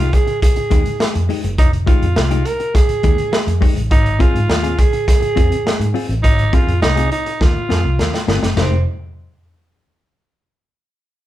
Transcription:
Already playing: G#3 D#4 F4 G4
0.12 G#4, muted clean electric guitar stroke, kick, closed hi-hat
0.27 muted clean electric guitar stroke, closed hi-hat
0.42 G#4, kick, closed hi-hat
0.56 muted clean electric guitar stroke, muted fingered electric bass stroke, closed hi-hat
0.70 D#2 G#3 D#4 G4, kick, closed hi-hat
0.85 muted clean electric guitar stroke, closed hi-hat
1.00 muted clean electric guitar stroke, snare
1.14 F2, muted clean electric guitar stroke, closed hi-hat
1.29 G#3 D#4 G4, open hi-hat
1.44 F#1, muted clean electric guitar stroke, closed hi-hat
1.58 F1 D#4, kick, closed hi-hat
1.73 closed hi-hat
1.86 G#3 D#4 F4 G4, kick, closed hi-hat
2.02 F2, closed hi-hat
2.16 C2, muted clean electric guitar stroke, snare
2.31 G#3 D#4 G4, closed hi-hat
2.45 A#4, muted clean electric guitar stroke, closed hi-hat
2.60 muted clean electric guitar stroke, closed hi-hat
2.74 G#4, muted clean electric guitar stroke, kick, snare, closed hi-hat
2.89 muted fingered electric bass stroke, closed hi-hat
3.03 D#2 G#3 D#4 G4, kick, closed hi-hat
3.17 muted clean electric guitar stroke, closed hi-hat
3.32 muted clean electric guitar stroke, snare
3.47 F2, muted clean electric guitar stroke, closed hi-hat
3.61 G#3 D#4 G4, kick, open hi-hat
3.76 A1, muted clean electric guitar stroke, closed hi-hat
3.91 G#1 D#4, kick, closed hi-hat
4.06 closed hi-hat
4.19 C4 F4 G#4, kick, closed hi-hat
4.34 G#2, closed hi-hat
4.49 D#2, muted clean electric guitar stroke, snare
4.63 C4 F4 G#4, closed hi-hat
4.78 G#4, muted clean electric guitar stroke, kick, closed hi-hat
4.93 muted clean electric guitar stroke, closed hi-hat
5.08 G#4, kick, snare, closed hi-hat
5.21 muted fingered electric bass stroke, muted clean electric guitar stroke, closed hi-hat
5.36 F2 C4 F4 G#4, kick, closed hi-hat
5.51 muted clean electric guitar stroke, closed hi-hat
5.66 muted clean electric guitar stroke, snare
5.79 G#2, muted clean electric guitar stroke, closed hi-hat
5.94 C4 F4 G#4, open hi-hat
6.08 A1, muted clean electric guitar stroke, closed hi-hat
6.23 G#1 D#4, kick, closed hi-hat
6.39 closed hi-hat
6.53 C4 F4 G#4, kick, closed hi-hat
6.67 F2, closed hi-hat
6.82 C2 D#4, muted clean electric guitar stroke, snare
6.97 C4 F4 G#4, closed hi-hat
7.11 D#4, muted clean electric guitar stroke, closed hi-hat
7.26 muted clean electric guitar stroke, closed hi-hat
7.41 D#2 F4, muted clean electric guitar stroke, kick, snare
7.69 F2 C4 F4 G#4, snare
7.84 C2, muted clean electric guitar stroke
7.99 D#2, muted clean electric guitar stroke, snare
8.14 muted clean electric guitar stroke, snare
8.28 G1 C4 F4 G#4, snare
8.42 F#1, muted clean electric guitar stroke, snare
8.56 F1 G#3 C4 D#4 G4, snare, floor tom, splash

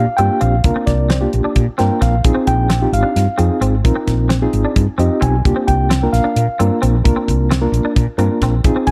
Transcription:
Already playing: F5
0.07 muted fretless electric bass stroke
0.17 G2 A#3 C4 D4 F4 G4 G5, closed hi-hat
0.41 A#1 C4 F5, closed hi-hat
0.64 C2 A#3 D4 F4 A#4, kick, closed hi-hat
0.76 C4
0.86 C2 D5, kick, snare, closed hi-hat
1.10 C4, snare, closed hi-hat
1.21 A#3 D4 F4 G4
1.33 A#1, closed hi-hat
1.44 D4, muted fretless electric bass stroke
1.56 A#2, kick, closed hi-hat
1.68 muted fretless electric bass stroke
1.78 G2 A#3 C4 D4 F4 A#4 G5, snare, closed hi-hat
2.01 A#1 C4 F5, kick, snare, closed hi-hat
2.24 A#1 C4 D#4 F4 G#4, kick, closed hi-hat
2.35 C4
2.47 A#1 G5, kick, closed hi-hat
2.70 C4, snare, closed hi-hat
2.82 C4 D#4 F4 G4
2.92 G#1 F5, closed hi-hat
3.03 D4
3.16 G2, snare, closed hi-hat
3.27 muted fretless electric bass stroke
3.38 F2 C4 D#4 F4 G#4, closed hi-hat
3.61 G#1 C4, closed hi-hat
3.84 A#1 C4 D#4 F4 A#4, kick, closed hi-hat
3.96 C4
4.07 A#1, kick, snare, closed hi-hat
4.29 C4, snare, closed hi-hat
4.42 C4 D#4 F4 G#4
4.53 G#1, closed hi-hat
4.65 D4
4.76 G2, kick, closed hi-hat
4.88 muted fretless electric bass stroke
4.98 F2 C4 D#4 F4 G4 D#5, closed hi-hat
5.21 B1 C4 G#5, kick, closed hi-hat
5.45 C2 A#3 D4 F4 G4, kick, closed hi-hat
5.56 C4
5.67 C2 G5, kick, closed hi-hat
5.90 C4, snare, closed hi-hat
6.03 A#3 D4 F4 A#4
6.13 A#1 F5, snare, closed hi-hat
6.24 D4
6.36 A#2, closed hi-hat
6.48 muted fretless electric bass stroke
6.59 G2 A#3 C4 D4 F4 A#4, closed hi-hat
6.82 A#1 C4, closed hi-hat
7.04 C2 A#3 D4 F4 A#4, kick, closed hi-hat
7.16 C4, muted fretless electric bass stroke
7.28 C2, kick, closed hi-hat
7.51 C4, snare, closed hi-hat
7.61 A#3 D4 F4 A#4
7.72 A#1, closed hi-hat
7.85 D4
7.96 A#2, kick, closed hi-hat
8.07 muted fretless electric bass stroke
8.18 G2 A#3 C4 D4 F4 A#4, closed hi-hat
8.41 A#1 C4, kick, snare, closed hi-hat
8.64 A#1 C4 D#4 F4 G#4, kick, closed hi-hat
8.76 C4
8.87 A#1 G#5, kick, closed hi-hat

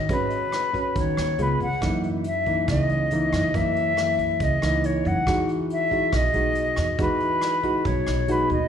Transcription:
Already playing: D#5
0.09 G#1 G#3 C#4 F#4 B4, kick, closed hi-hat
0.30 closed hi-hat
0.52 cross-stick, closed hi-hat
0.73 C#4 F#4 B4, kick, closed hi-hat
0.96 D#2 D#3 C#5, kick, closed hi-hat
1.17 D#2, cross-stick, closed hi-hat
1.38 C#2 G#3 B3 F4 B4, closed hi-hat
1.60 C#2 F#5, kick, closed hi-hat
1.81 F#2 E3 A#3 D#4, kick, cross-stick, closed hi-hat
2.03 closed hi-hat
2.24 E5, closed hi-hat
2.46 E3 A#3 D#4, kick, closed hi-hat
2.68 C#2 C#3 D#5, kick, cross-stick, closed hi-hat
2.89 C#2, closed hi-hat
3.11 E3 A#3 D#4, closed hi-hat
3.32 F#2, kick, cross-stick, closed hi-hat
3.54 F#2 E3 A#3 E5, kick, closed hi-hat
3.76 closed hi-hat
3.97 E3 A#3, cross-stick, closed hi-hat
4.19 kick, closed hi-hat
4.40 C#2 C#3 D#5, kick, closed hi-hat
4.62 C#2 E3 A#3 D#4, cross-stick, closed hi-hat
4.84 C#5, closed hi-hat
5.05 F#2 F#5, kick, closed hi-hat
5.27 E2 E3 G#3 D#4 F#4, kick, cross-stick, closed hi-hat
5.49 closed hi-hat
5.70 E5, closed hi-hat
5.91 G#3 D#4 F#4, kick, closed hi-hat
6.12 B1 B2 D#5, kick, cross-stick, closed hi-hat
6.34 B1 G#3 D#4 F#4, closed hi-hat
6.55 closed hi-hat
6.76 E2, kick, cross-stick, closed hi-hat
6.99 E2 E3 G#3 D#4 F#4 B4, kick, closed hi-hat
7.20 closed hi-hat
7.41 cross-stick, closed hi-hat
7.63 G#3 D#4 F#4, kick, closed hi-hat
7.85 B1 B2 C#5, kick, closed hi-hat
8.07 B1, cross-stick, closed hi-hat
8.28 G#3 D#4 F#4 B4, closed hi-hat
8.49 D#2 D#5, kick, closed hi-hat

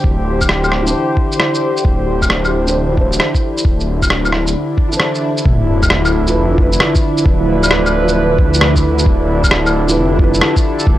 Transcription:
Already playing: D3 E3 D4 E4 G4 C5
0.04 D1, kick
0.41 kick, claves, shaker
0.49 cross-stick
0.64 claves, shaker
0.72 cross-stick
0.83 E3
0.87 D4 C5, shaker
1.17 kick
1.32 shaker
1.40 cross-stick
1.54 shaker
1.77 shaker
1.85 D1, kick
2.22 kick, claves, shaker
2.30 cross-stick
2.45 claves, shaker
2.65 E3 D4 C5, shaker
2.75 D1
2.93 E3 D4
2.97 C5, kick
3.13 shaker
3.20 cross-stick
3.35 kick, shaker
3.58 shaker
3.65 D1, kick
3.80 shaker
4.02 kick, claves, shaker
4.10 cross-stick
4.25 claves, shaker
4.32 cross-stick
4.47 shaker
4.55 swell
4.78 kick
4.89 E3, shaker
4.93 D4
4.97 C5, cross-stick
5.15 shaker
5.38 shaker
5.45 D1, kick, sub drop
5.83 kick, claves, shaker
5.90 cross-stick
6.05 claves, shaker
6.26 F3 E4 B4, shaker
6.35 F1
6.54 F3, kick
6.58 E4 B4
6.73 F3, shaker
6.80 cross-stick
6.85 B4
6.95 kick, shaker
7.18 shaker
7.26 D1, kick
7.63 claves, shaker
7.71 cross-stick
7.86 claves, shaker
8.04 F3
8.08 E4 B4, shaker
8.39 D2, kick
8.54 shaker
8.61 cross-stick
8.76 kick, shaker
8.99 shaker
9.06 D1, kick
9.33 G4
9.44 kick, claves, shaker
9.51 cross-stick
9.66 claves, shaker
9.86 F3 E4 A4, shaker
9.91 B4
9.96 F1
10.16 F3, kick
10.20 E4 B4
10.34 shaker
10.41 cross-stick
10.57 kick, shaker
10.79 shaker
10.87 D1, kick

